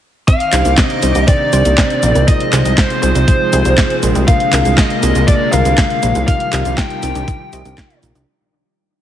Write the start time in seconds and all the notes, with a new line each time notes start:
0.28 D#3 C4 F5 D6, kick, closed hi-hat, cabasa
0.40 closed hi-hat
0.53 C2 C3 D4 D#4 G4 C5, clap, closed hi-hat, cabasa
0.65 C2 A#3, closed hi-hat, cabasa
0.78 C4 D#5, kick, snare, clap, closed hi-hat, cabasa
0.90 closed hi-hat
1.03 C2 C3 C4 D4 D#4 G4 C5, closed hi-hat, cabasa
1.15 C2 A#3, closed hi-hat, cabasa
1.28 C4 D5, kick, closed hi-hat, cabasa
1.53 C2 C3 D4 D#4 G4 C5, closed hi-hat, cabasa
1.65 C2 A#3, closed hi-hat, cabasa
1.78 C4, kick, snare, clap, closed hi-hat, cabasa
1.90 closed hi-hat
2.03 A#1 C3 C4 D#4 F4 G#4 A#4, closed hi-hat, cabasa
2.15 C2 A#3, closed hi-hat, cabasa
2.28 F3 G#3 D#5, kick, closed hi-hat, cabasa
2.40 closed hi-hat
2.53 C2 C3 D#4 F4 G#4 C5, clap, closed hi-hat, cabasa
2.65 C2 G3, closed hi-hat, cabasa
2.78 G#3 C5, kick, snare, clap, closed hi-hat, cabasa
2.90 closed hi-hat
3.03 C2 C3 G#3 D#4 F4 G#4 C5, closed hi-hat, cabasa
3.15 C2 G3, closed hi-hat, cabasa
3.28 G#3, kick, closed hi-hat, cabasa
3.53 C2 C3 D#4 F4 G#4 C5, closed hi-hat, cabasa
3.65 C2 G3, closed hi-hat, cabasa
3.78 G#3, kick, snare, clap, closed hi-hat, cabasa
3.90 closed hi-hat
4.03 A#1 C3 G#3 D4 F4 G#4 A#4, closed hi-hat, cabasa
4.15 C2 G3, closed hi-hat, cabasa
4.28 D3 A#3 F5, kick, closed hi-hat, cabasa
4.40 closed hi-hat
4.53 C2 C3 D4 F4 G#4 A#4, clap, closed hi-hat, cabasa
4.65 C2 G#3, closed hi-hat, cabasa
4.78 A#3 D#5, kick, snare, clap, closed hi-hat, cabasa
4.90 closed hi-hat
5.03 C2 C3 A#3 D4 F4 G#4 A#4, closed hi-hat, cabasa
5.15 C2 G#3, closed hi-hat, cabasa
5.27 A#3 D5, kick, closed hi-hat, cabasa
5.52 C2 C3 D4 F4 G#4 A#4 F5, closed hi-hat, cabasa
5.65 C2 G#3, closed hi-hat, cabasa
5.78 A#3, kick, snare, clap, closed hi-hat, cabasa
5.90 closed hi-hat
6.03 A#1 C3 A#3 D#4 F4 G4 A#4, closed hi-hat, cabasa
6.15 C2 G#3, closed hi-hat, cabasa
6.27 D#3 F3 G3 D#4 F5, kick, closed hi-hat, cabasa
6.40 closed hi-hat
6.53 C2 C3 D#4 F4 G4 A#4 D#5, clap, closed hi-hat, cabasa
6.65 C2 D4, closed hi-hat, cabasa
6.77 D#4 G5, kick, snare, clap, closed hi-hat, cabasa
6.90 closed hi-hat
7.03 C2 C3 D#4 F4 G4 A#4, closed hi-hat, cabasa
7.15 C2 D4, closed hi-hat, cabasa
7.28 D#4, kick, closed hi-hat, cabasa
7.53 C2 C3 D#4 F4 G4 A#4 D#5, closed hi-hat, cabasa
7.65 C2 C3 D4 D#4 F4 G4 A#4, closed hi-hat, cabasa
7.78 D#4, kick, snare, clap, closed hi-hat, cabasa
7.90 closed hi-hat
8.03 A#1 C3 D#4 F4 G4 A#4, closed hi-hat, cabasa
8.15 C2 D4, closed hi-hat, cabasa